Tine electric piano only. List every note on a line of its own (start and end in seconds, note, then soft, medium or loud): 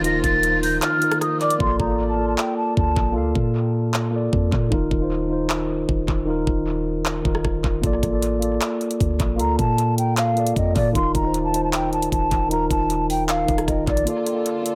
0.00 0.02 D#3 loud
0.00 0.70 D#3 loud
0.00 0.04 D#4 medium
0.00 0.71 D#4 medium
0.00 0.05 F4 medium
0.00 0.07 A#4 loud
0.00 1.62 C5 medium
0.05 0.71 F4 medium
0.05 0.72 A#4 loud
0.99 1.50 D#3 medium
0.99 1.51 D#4 medium
0.99 1.52 F4 medium
1.04 1.53 A#4 medium
1.58 1.84 A#3 medium
1.58 1.85 F4 medium
1.58 1.86 A4 medium
1.63 1.87 D5 loud
1.86 2.13 A#3 medium
1.86 2.14 F4 medium
1.86 2.15 A4 medium
1.91 2.15 D5 medium
2.16 2.84 A#3 medium
2.16 2.85 F4 medium
2.16 2.86 A4 medium
2.21 2.86 D5 medium
3.13 3.81 A#3 loud
3.13 3.82 F4 medium
3.13 3.83 A4 medium
3.18 3.84 F5 loud
4.11 4.62 A#3 medium
4.11 4.63 F4 medium
4.11 4.64 A4 medium
4.16 4.65 D5 medium
4.69 4.95 D#3 loud
4.69 4.96 D#4 medium
4.69 4.97 F4 medium
4.74 4.98 A#4 loud
4.99 5.25 D#3 medium
4.99 5.26 D#4 medium
4.99 5.26 F4 medium
5.04 5.27 C5 medium
5.28 5.96 D#3 medium
5.28 5.96 D#4 medium
5.28 5.97 F4 medium
5.33 5.98 C5 medium
6.25 6.93 D#3 loud
6.25 6.94 D#4 medium
6.25 6.95 F4 medium
6.30 6.96 A#4 loud
7.22 7.74 D#3 medium
7.22 7.75 D#4 medium
7.22 7.75 F4 medium
7.27 7.76 A#4 medium
7.81 8.07 A#3 medium
7.81 8.08 F4 medium
7.81 8.09 A4 medium
7.87 8.10 D5 loud
8.10 8.36 A#3 medium
8.10 8.37 F4 medium
8.10 8.38 A4 medium
8.15 8.39 D5 medium
8.39 9.07 A#3 medium
8.39 9.08 F4 medium
8.39 9.09 A4 medium
8.44 9.10 D5 medium
9.36 10.04 A#3 loud
9.36 10.05 F4 medium
9.36 10.06 A4 medium
9.41 10.07 F5 loud
10.34 10.86 A#3 medium
10.34 10.86 F4 medium
10.34 10.87 A4 medium
10.39 10.88 D5 medium
10.92 11.19 D#3 loud
10.92 11.20 D#4 medium
10.92 11.20 F4 medium
10.97 11.21 A#4 loud
11.22 11.48 D#3 medium
11.22 11.49 D#4 medium
11.22 11.50 F4 medium
11.27 11.51 C5 medium
11.51 12.19 D#3 medium
11.51 12.20 D#4 medium
11.51 12.21 F4 medium
11.56 12.22 C5 medium
12.48 13.16 D#3 loud
12.48 13.17 D#4 medium
12.48 13.18 F4 medium
12.54 13.19 A#4 loud
13.46 13.97 D#3 medium
13.46 13.98 D#4 medium
13.46 13.99 F4 medium
13.51 14.00 A#4 medium
14.05 14.31 A#3 medium
14.05 14.32 F4 medium
14.05 14.33 A4 medium
14.10 14.33 D5 loud
14.33 14.60 A#3 medium
14.33 14.60 F4 medium
14.33 14.61 A4 medium
14.38 14.62 D5 medium
14.63 14.75 A#3 medium
14.63 14.75 F4 medium
14.63 14.75 A4 medium
14.68 14.75 D5 medium